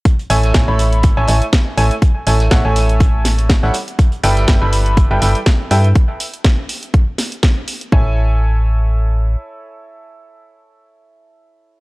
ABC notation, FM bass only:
X:1
M:4/4
L:1/16
Q:"Swing 16ths" 1/4=122
K:A
V:1 name="FM bass" clef=bass
z2 A,,,2 A,,, A,,,4 A,,, A,,, z3 A,,, z | z2 A,,,2 A,,, A,,,8 A,,, z2 | z2 =G,,,2 G,,, G,,,4 G,,, G,,, z3 =G,,2 | z16 |
A,,,12 z4 | z16 |]